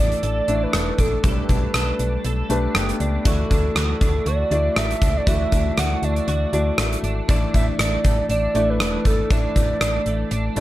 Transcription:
Already playing: A1 E3 A3 D4 E4 A4 D5
0.12 closed hi-hat
0.23 A1 A4 D5, closed hi-hat
0.48 A1 A3 D4 E4 C#5, closed hi-hat
0.55 D5
0.63 B4
0.73 E1 A3, cross-stick, closed hi-hat
0.98 A#1 D4 A4, kick, closed hi-hat
1.24 B1 G3 A3 D4 G4 A4 B4, kick, closed hi-hat
1.49 B1 D4, kick, closed hi-hat
1.74 B1 A4, cross-stick, closed hi-hat
1.99 B1 D4, closed hi-hat
2.24 B1 A4, closed hi-hat
2.49 B1 A3 D4 G4 B4 A5, closed hi-hat
2.75 F#1 B3 G5, cross-stick, closed hi-hat
2.89 closed hi-hat
3.00 C#2 D4 D5, closed hi-hat
3.25 D2 E3 A3 E4 F#4 A4 D5, kick, closed hi-hat
3.51 D2 D4, kick, closed hi-hat
3.75 D2 F#4, cross-stick, closed hi-hat
4.01 D2 D4, kick, closed hi-hat
4.26 D2 F#4 D5, closed hi-hat
4.51 D2 A3 D4 E4 F#4 D5, closed hi-hat
4.76 A1 A3 E5, cross-stick, closed hi-hat
4.91 closed hi-hat
5.02 C#2 D4, kick, closed hi-hat
5.17 D5
5.27 D2 E3 A3 E4 F#4 D5 E5, kick, closed hi-hat
5.52 D2 D4, kick, closed hi-hat
5.77 D2 F#4 F#5, cross-stick, closed hi-hat
6.02 D2 D4 D5, closed hi-hat
6.16 closed hi-hat
6.28 D2 F#4, closed hi-hat
6.52 D2 A3 D4 E4 F#4 D5, closed hi-hat
6.78 A1 A3, cross-stick, closed hi-hat
6.92 closed hi-hat
7.03 G#1 D4, closed hi-hat
7.28 A1 E3 A3 D4 E4 D5, kick, closed hi-hat
7.54 A1 A3 E5, kick, closed hi-hat
7.79 A1 D4 D5, cross-stick, closed hi-hat
8.04 A1 A3, kick, closed hi-hat
8.29 A1 D4 D5, closed hi-hat
8.55 A1 A3 D4 E4 D5, closed hi-hat
8.70 B4
8.80 E1 E3, cross-stick, closed hi-hat
9.05 G#1 A3 A4, kick, closed hi-hat
9.30 A1 E3 A3 D4 E4 D5, kick, closed hi-hat
9.56 A1 A3, kick, closed hi-hat
9.81 A1 D4, cross-stick, closed hi-hat
10.06 A1 A3, closed hi-hat
10.31 A1 D4, closed hi-hat
10.56 A1 G3 A3 D4 E4 D5, closed hi-hat

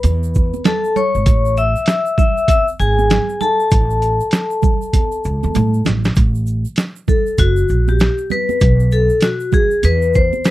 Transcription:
Already playing: B4 B5
0.03 E2, closed hi-hat, high conga, shaker
0.23 shaker
0.34 kick, shaker
0.54 high conga, shaker
0.64 A4 A5, snare, closed hi-hat, low conga, shaker
0.84 shaker
0.96 C#5 C#6, low conga, shaker
1.15 G#1, shaker
1.26 A1, kick, closed hi-hat, shaker
1.46 shaker
1.57 E5 E6, shaker
1.76 shaker
1.86 snare, closed hi-hat, shaker
2.06 shaker
2.18 E5 E6, kick, low conga, shaker
2.37 shaker
2.48 E5 E6, kick, closed hi-hat, high conga, shaker
2.68 shaker
2.80 G#1 G#4 G#5, shaker
2.99 high conga, shaker
3.10 snare, closed hi-hat, low conga, shaker
3.29 shaker
3.41 A4 A5, low conga, shaker
3.42 shaker
3.60 shaker
3.71 A1, kick, closed hi-hat, shaker
3.90 shaker
4.02 closed hi-hat, shaker
4.20 shaker
4.31 snare, closed hi-hat, shaker
4.51 shaker
4.62 kick, low conga, shaker
4.82 shaker
4.93 kick, closed hi-hat, high conga, shaker
5.12 shaker
5.24 C#2, shaker
5.43 E2, high conga, shaker
5.55 A2, closed hi-hat, low conga, shaker
5.74 shaker
5.85 A1, snare, closed hi-hat, low conga, shaker
5.87 shaker
6.04 snare, shaker
6.15 A1, kick, closed hi-hat, shaker
6.35 shaker
6.46 shaker
6.65 shaker
6.76 snare, closed hi-hat, shaker
6.96 shaker
7.08 A4, kick, low conga, shaker
7.26 shaker
7.38 F#1 F#4, kick, closed hi-hat, high conga, shaker
7.57 shaker
7.68 A#1, shaker
7.70 shaker
7.88 G4, high conga, shaker
7.99 snare, closed hi-hat, shaker
8.18 shaker
8.30 B4, high conga, low conga, shaker
8.32 shaker
8.49 high conga, shaker
8.60 B1, kick, closed hi-hat, shaker
8.80 shaker
8.91 A4, shaker
9.09 shaker
9.21 F#4, snare, closed hi-hat, shaker
9.40 shaker
9.52 G#4, kick, low conga, shaker
9.71 shaker
9.83 E2 B4, closed hi-hat, high conga, shaker
10.02 shaker
10.14 C5, kick, shaker
10.33 high conga, shaker
10.45 B4, snare, closed hi-hat, shaker

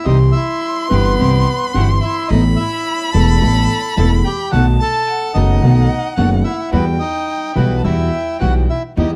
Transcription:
0.04 C2 C3 E3 G3 C4 D#4 E4 G4 D#5 C6
0.32 E4 E5
0.89 G1 G2 E3 G3 B3 C4 E4 G4 B4
1.19 C2 C3 E3 G3 C4 E4 G4
1.74 G1 G2 E3 G3 C4 E4 F#4 G4 F#5
2.01 E4 E5
2.28 A1 A2 E3 A3 B3 D#4 E4 A4 D#5 B5
2.56 E4 E5
3.13 E1 E2 E3 A3 B3 E4 A4 A5
3.41 A1 A2 E3 A3 B3 E4 A4
3.96 E1 E2 E3 A3 B3 E4 A4 A5
4.25 G4 G5
4.52 B1 B2 D#3 A3 B3 D#4 F#4 A4 F#5 A5
4.80 A4 A5
5.09 F#5
5.34 F#1 F#2 D#3 A3 B3 D#4 F#4 A4 D#5
5.62 B1 B2 D#3 A3 B3 D#4 F#4 A4
6.16 F#1 F#2 D#3 A3 B3 D#4 F#4 A4 F#5
6.44 E4 E5
6.72 E2 E3 G3 B3 E4 F#4 B4 G5
7.00 D#4 D#5
7.55 B1 B2 E3 G3 B3 E4 F#4 B4
7.78 A5
7.84 E2 E3 G3 B3 E4 F#4 E5 G5
8.40 B1 B2 E3 G3 B3 E4 F#4 F#5
8.70 E4 E5
8.97 E2 E3 G3 B3 D#4 E4 G4 D#5

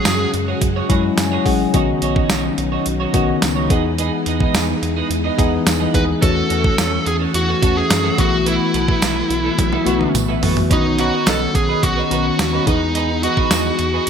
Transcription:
Already playing: C#3 F#3 G#3 C#4 F#4 G#4
0.05 F#2 F#4 G#4 C#5, snare, closed hi-hat, tambourine
0.20 muted clean electric guitar stroke
0.34 F#2, muted clean electric guitar stroke, closed hi-hat
0.48 F#4 G#4 C#5
0.62 F#2, muted clean electric guitar stroke, kick, closed hi-hat
0.76 F#4 G#4 C#5
0.88 F#2 F#3 G#3 C#4 E4 F#4 G#4 C#5, kick, closed hi-hat
1.04 muted clean electric guitar stroke
1.17 F#2 G#5, muted clean electric guitar stroke, snare, closed hi-hat, tambourine
1.32 F#4 G#4 C#5
1.44 A1 F#3 G#3 C#4 G#4 C#5 F#5, kick, open hi-hat
1.60 muted clean electric guitar stroke
1.73 B1 D#3 F#3 B3 C#4 D#4 F#4 C#5, kick, closed hi-hat
1.89 muted clean electric guitar stroke
2.02 B1 D#4 F#4 C#5, closed hi-hat
2.16 D#4 F#4 C#5, kick
2.30 B1 D#4 F#4 C#5, snare, closed hi-hat, tambourine
2.45 muted clean electric guitar stroke
2.58 B1, muted clean electric guitar stroke, closed hi-hat
2.72 D#4 F#4 C#5
2.86 B1, muted clean electric guitar stroke, closed hi-hat
3.00 D#4 F#4 C#5
3.13 B1 D#3 B3 C#4 D#4 F#4 C#5, kick, closed hi-hat
3.28 muted clean electric guitar stroke
3.42 C#2, muted clean electric guitar stroke, snare, closed hi-hat, tambourine
3.56 D#4 F#4 C#5
3.69 E2 E3 G#3 B3 D#4 G#4, kick, closed hi-hat
3.84 muted clean electric guitar stroke
3.98 B3 D#4 G#4, closed hi-hat
4.13 muted clean electric guitar stroke
4.26 E2 B3 D#4 G#4, closed hi-hat
4.40 B3 D#4 G#4, kick
4.54 E2 B3 D#4 G#4, snare, closed hi-hat, tambourine
4.69 muted clean electric guitar stroke
4.82 E2, muted clean electric guitar stroke, closed hi-hat
4.96 B3 D#4 G#4
5.10 E2, muted clean electric guitar stroke, closed hi-hat
5.24 B3 D#4 G#4
5.37 E2 E3 B3 D#4 G#4, kick, closed hi-hat
5.53 muted clean electric guitar stroke
5.67 E2, muted clean electric guitar stroke, snare, closed hi-hat, tambourine
5.80 B3 D#4 G#4
5.94 D#2 E3 B3 D#4 G#4 B4, kick, closed hi-hat
6.08 muted clean electric guitar stroke
6.21 E2 E3 A3 C#4 F#4 A4, kick, closed hi-hat
6.36 muted clean electric guitar stroke
6.49 E2 C#4 F#4 A4, closed hi-hat
6.63 C#4 F#4 A4, kick
6.77 E2 C#4 F#4 A4, snare, closed hi-hat, tambourine
6.92 muted clean electric guitar stroke
7.05 E2 G#4, muted clean electric guitar stroke, closed hi-hat
7.20 C#4 F#4 A4
7.34 E2 F#4, muted clean electric guitar stroke, closed hi-hat
7.48 C#4 F#4 A4
7.62 E2 E3 A3 C#4 F#4 A4, kick, closed hi-hat
7.76 G#4, muted clean electric guitar stroke
7.90 F#2, muted clean electric guitar stroke, snare, closed hi-hat, tambourine
8.03 C#4 F#4 A4
8.18 B1 E3 A3 B3 E4 F#4 A4, kick, closed hi-hat
8.32 muted clean electric guitar stroke
8.46 B3 E4 A4, closed hi-hat
8.61 muted clean electric guitar stroke
8.74 B1 B3 E4 A4, closed hi-hat
8.88 B3 E4 A4, kick
9.02 B1 B3 E4 A4, snare, closed hi-hat, tambourine
9.16 muted clean electric guitar stroke
9.30 B1, muted clean electric guitar stroke, closed hi-hat
9.44 B3 E4 A4
9.58 B1, muted clean electric guitar stroke, kick, closed hi-hat, high tom
9.72 B3 E4 A4, high tom
9.85 B1 E3 A3 B3 E4 F#4 A4, closed hi-hat
10.00 muted clean electric guitar stroke, mid tom
10.14 B1, muted clean electric guitar stroke, closed hi-hat, mid tom, tambourine
10.28 B3 E4 A4
10.41 A1 E3 A3 B3 E4 F#4 A4, floor tom, open hi-hat
10.56 muted clean electric guitar stroke, floor tom
10.70 B1 D#3 B3 C#4 D#4 F#4 B4, kick, closed hi-hat
10.84 muted clean electric guitar stroke
10.98 C#4 D#4 F#4 B4, closed hi-hat
11.13 C#4 D#4 B4
11.26 B1 C#4 D#4 A4 B4, snare, closed hi-hat, tambourine
11.41 muted clean electric guitar stroke
11.55 B1 G#4, muted clean electric guitar stroke, kick, closed hi-hat
11.69 C#4 D#4 B4
11.83 B1 F#4, muted clean electric guitar stroke, kick, closed hi-hat
11.97 C#4 D#4 B4
12.10 B1 D#3 B3 C#4 D#4 F#4 B4, closed hi-hat
12.25 muted clean electric guitar stroke
12.39 D#2, muted clean electric guitar stroke, snare, closed hi-hat, tambourine
12.53 C#4 D#4 B4
12.66 E2 E3 G#3 B3 D#4 G#4 B4, kick, closed hi-hat
12.81 muted clean electric guitar stroke
12.95 D#4 G#4 B4, closed hi-hat
13.10 muted clean electric guitar stroke
13.23 D#4 F#4 G#4 B4, closed hi-hat
13.37 D#4 G#4 B4, kick
13.51 E2 D#4 G#4 B4, snare, closed hi-hat, tambourine
13.66 muted clean electric guitar stroke
13.79 E2, muted clean electric guitar stroke, closed hi-hat
13.94 D#4 G#4 B4

